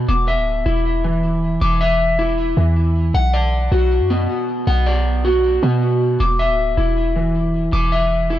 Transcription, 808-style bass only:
0.09 E1
0.37 D1
0.66 E1
1.61 E1
2.57 E2
3.14 B1
3.72 B1
4.00 F#2
4.67 B1
5.63 B2
6.20 E1
6.49 D1
6.77 E1
7.73 E1

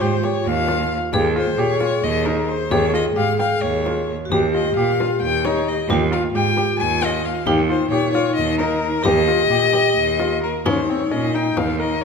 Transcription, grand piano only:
0.01 G4
0.24 G4
0.68 F4
1.14 G4
1.36 F4
1.58 G4
1.81 F4
2.26 D#4
2.72 G4
2.94 F4
3.16 G4
3.39 G5
3.86 F4
4.32 G4
4.55 F4
4.77 G4
5.00 F4
5.46 D#4
5.90 G4
6.12 F4
6.35 G4
6.58 G4
7.02 F4
7.47 G4
7.70 F4
7.92 G4
8.15 F4
8.60 D#4
9.05 G4
9.28 F4
9.51 G4
9.73 G4
10.20 F4
10.66 C#4
10.90 C4
11.11 C#4
11.34 D#4
11.80 A#4

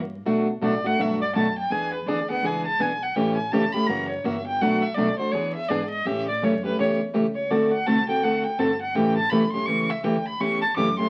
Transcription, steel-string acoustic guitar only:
0.26 B2 F#3 A3 D4 F#4
0.62 B2 F#3 A3 D4 F#4
0.84 A3 D4 F#4
0.99 B2 F#3 A3 D4 F#4
1.36 B2 F#3 A3 D4 F#4
1.71 E3 B3 D4 G#4
2.07 E3 B3 D4 G#4
2.30 B3 D4 G#4
2.44 E3 B3 D4 G#4
2.80 E3 B3 D4 G#4
3.16 C#3 E3 A3 C#4 G4
3.53 C#3 E3 A3 C#4 G4
3.74 A3 C#4 G4
3.88 C#3 E3 A#3 C#4 F#4
4.24 C#3 E3 A#3 C#4 F#4
4.61 B2 F#3 A3 D4 F#4
4.97 B2 F#3 A3 D4 F#4
5.19 A3 D4 F#4
5.34 E3 B3 D4 G#4
5.70 E3 B3 D4 G#4
6.06 C#3 E3 A3 C#4 G4
6.43 C#3 E3 A3 C#4 G4
6.64 A3 C#4 G4
6.78 C#3 E3 A3 C#4 G4
7.14 C#3 E3 A3 C#4 G4
7.50 D3 A3 C4 F#4 A4
7.87 D3 A3 C4 F#4 A4
8.09 C4 F#4 A4
8.24 D3 A3 C4 F#4 A4
8.59 D3 A3 C4 F#4 A4
8.95 C#3 E3 A3 C#4 G4
9.32 C#3 E3 A3 C#4 G4
9.54 A3 C#4 G4
9.68 C#3 E3 A3 C#4 G4
10.03 C#3 E3 A3 C#4 G4
10.40 C#3 E3 A3 C#4 G4
10.77 C#3 E3 A3 C#4 G4
10.98 A3 C#4 G4

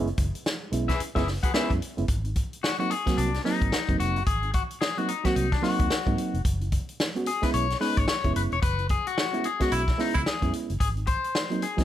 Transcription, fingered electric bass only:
Already playing: F#1
0.18 F#1
0.72 B1
1.00 muted fingered electric bass stroke
1.16 F#1
1.71 F#2
1.98 F#1
2.09 G#1
3.18 C2
3.62 G#1
3.89 F#1
4.00 F1
4.17 F#1
4.27 G#1
5.36 C2
5.80 D#2
6.07 G#2
6.34 F1
6.45 F#1
7.54 B1
7.97 G#1
8.25 F#1
8.36 F#1
8.52 E1
8.63 F#1
9.72 B1
10.15 C#2
10.42 F#2
10.70 F#1
10.81 G#1

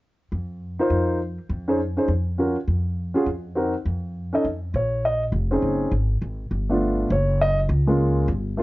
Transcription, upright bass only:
0.32 F2
0.90 F2
1.49 F2
2.08 F2
2.68 F2
3.26 F2
3.86 F2
4.44 F2
4.74 A#1
5.32 F1
5.62 F#1
5.91 G#1
6.22 G#1
6.51 G1
7.10 F#1
7.69 C#2
8.28 G1

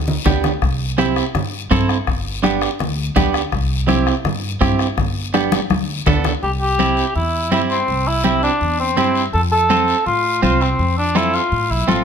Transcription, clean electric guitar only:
0.26 B3 D4 G4
0.98 C4 E4 G4
1.71 C4 E4 A4
2.43 B3 D4 G4
3.16 B3 D4 G4
3.88 C4 E4 G4
4.61 C4 E4 G4
5.34 B3 D4 G4
6.07 B3 D4 A4
6.79 C4 E4 G4
7.52 C4 E4 G4
8.24 C4 E4 G4
8.97 C4 E4 G4
9.70 C4 F4 A4
10.42 C4 F4 C5
11.15 C4 F4 A4
11.88 C4 F4 A4

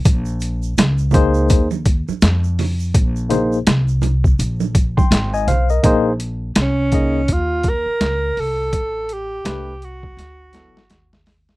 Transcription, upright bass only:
0.05 A#1
0.79 C#2
1.51 D#2
2.09 muted upright bass stroke
2.22 F2
2.95 A#1
3.67 C2
4.39 A#1
4.98 muted upright bass stroke
5.11 G#1
5.47 B1
5.84 A#1
6.56 C2
7.29 D#2
7.86 muted upright bass stroke
8.00 C#2
8.37 C2
8.73 A1
9.45 C2
10.17 D2
10.76 muted upright bass stroke
10.90 D#2

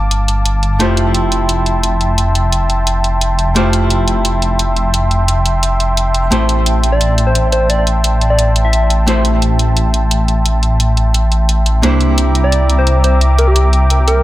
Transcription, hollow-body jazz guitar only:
Already playing: A#3 D4 F4 A4 C5
0.79 A3 E4 F4 G4 C5
3.55 A3 E4 F4 G4 C5
6.31 A3 C4 E4 G4 C5
9.07 A3 C4 E4 G4 C5
11.82 A#3 D4 E4 G4 C5

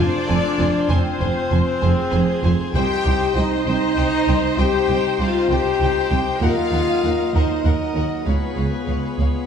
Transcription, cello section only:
0.29 F2
0.59 F2
0.91 F2
1.21 F2
1.52 F2
1.83 F2
2.13 F2
2.44 F2
2.76 C2
3.06 C2
3.37 C2
3.67 C2
3.98 C2
4.29 C2
4.59 C2
4.89 C2
5.20 C2
5.50 C2
5.81 C2
6.11 C2
6.41 D#2
6.72 D#2
7.03 D#2
7.34 D#2
7.65 D#2
7.95 D#2
8.27 C#2
8.56 C#2
8.87 C#2
9.18 C#2

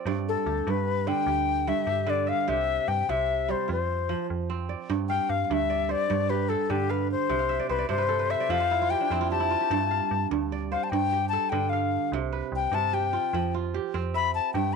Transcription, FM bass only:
0.06 G2
0.46 D2
0.67 G2
1.26 D2
1.87 G2
2.49 C2
2.88 G2
3.09 C2
3.69 F2
4.30 F2
4.90 G2
5.29 G2
5.50 D2
6.11 G2
6.70 G2
7.30 C2
7.70 C2
7.90 G2
8.49 F2
9.11 F2
9.70 G2
10.11 G2
10.31 D2
10.92 G2
11.52 G2
12.12 C2
12.52 C2
12.72 G2
13.33 F2
13.94 F2
14.54 G2

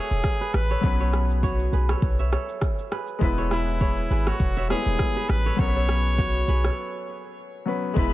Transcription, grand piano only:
Already playing: G#3 B3 E4 B4
0.81 F#3 B3 C#4
0.86 B4
3.19 G#3 B3 E4
3.24 B4
4.69 G3 B3 E4 B4
4.75 G#3
5.56 F#3 B3 C#4
5.61 A#4
5.68 B4
7.66 F#3 B3 C#4 B4
7.94 G#3 B3 E4
7.99 B4

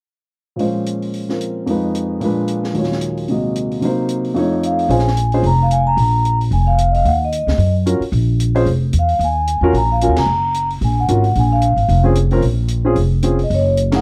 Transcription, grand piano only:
0.56 A#2 F3 G#3 C#4
0.60 C5
1.29 F3 C4 A#4
1.66 F2 F3 G#3 D#4
1.71 B4
2.20 A#2 F3 G#3 D4
2.25 B4
2.73 D#2 A#2 F#3 G#3
2.78 F4 C#5
3.29 C3 G#3 A#3 F#4 D#5
3.81 C3 F#3 A#3 D#4
3.85 C5
4.34 F2 F3 A3 D#4
4.39 C#5
4.90 C#4 F4 G#4 C5
5.34 C#4 F4 G#4 C5
7.86 C#4 F4 F#4 A#4
8.55 C#4 F4 G#4 C5
9.63 C#4 F4 F#4 A#4
10.02 C#4 F4 F#4 A#4
11.08 C#4 F4 F#4 A#4
12.04 C4 C#4 F4 G#4
12.31 C4 C#4 F4 A#4
12.85 C4 C#4 F4 G#4
13.23 C4 C#4 F4 G#4
13.92 A#3 C#4 E4 G#4

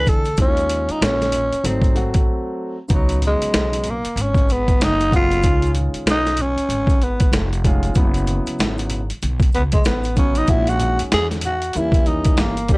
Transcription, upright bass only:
0.07 D2
0.38 D#2
0.89 muted upright bass stroke
1.01 A#1
1.52 muted upright bass stroke
1.64 G#1
2.90 C#2
3.42 muted upright bass stroke
3.54 B1
4.05 muted upright bass stroke
4.16 G#1
4.80 F#1
5.43 C#2
5.95 muted upright bass stroke
6.06 B1
6.57 muted upright bass stroke
6.69 G#1
7.32 F1
7.96 F#1
8.47 muted upright bass stroke
8.59 G#1
9.10 muted upright bass stroke
9.23 B1
9.55 C#2
9.87 A1
10.48 A#1
11.01 muted upright bass stroke
11.13 E2
11.76 D#2
12.39 G1

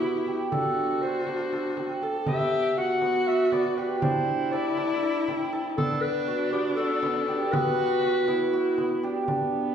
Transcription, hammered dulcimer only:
Already playing: D4 F#4 A4
0.03 B3
0.27 G4
0.52 D4
1.03 A4
1.28 D4
1.53 A4
1.78 C4
2.03 A4
2.28 B3
2.78 F#4
3.03 B3
3.28 F#4
3.53 B3
3.78 G4
4.03 D4
4.53 A4
4.77 D4
5.03 A4
5.28 C4
5.53 A4
5.78 B3
6.28 F#4
6.53 B3
6.78 F#4
7.03 B3
7.28 G4
7.53 B3
8.03 F#4
8.28 B3
8.53 F#4
8.78 B3
9.03 G4
9.28 D4

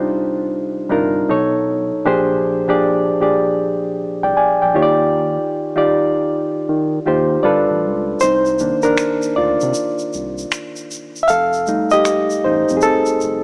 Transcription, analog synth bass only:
0.92 G1
1.30 B1
2.07 A#1
4.00 C2
4.24 C2
4.38 A#1
4.63 A#1
4.77 D#2
6.69 D#3
7.08 D#2
7.46 G1
7.71 A1
7.85 C#2
8.23 C2
8.86 D2
9.38 D2
9.63 C3
10.15 C2
11.30 F1
11.94 A1
12.46 A1
12.70 F2
13.23 F1

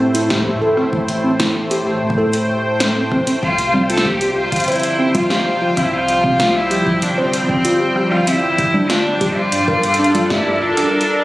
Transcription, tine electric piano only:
0.00 C4
0.15 E4
0.30 G4
0.62 A4
0.77 C4
1.24 C4
1.40 E4
1.71 G4
2.18 A4
2.80 C5
2.96 C4
3.12 C4
3.27 C4
3.74 C4
3.90 F4
4.21 G4
4.68 C5
4.99 C4
5.15 F4
5.30 G4
5.62 F4
5.77 C4
6.24 C4
6.40 F4
6.71 G4
7.18 C5
7.49 C4
7.65 F4
7.80 G4
8.12 F4
8.27 C4
8.74 D4
8.90 F4
9.21 G4
9.68 A#4
9.99 D4
10.15 F4
10.30 G4
10.62 F4
10.77 D4

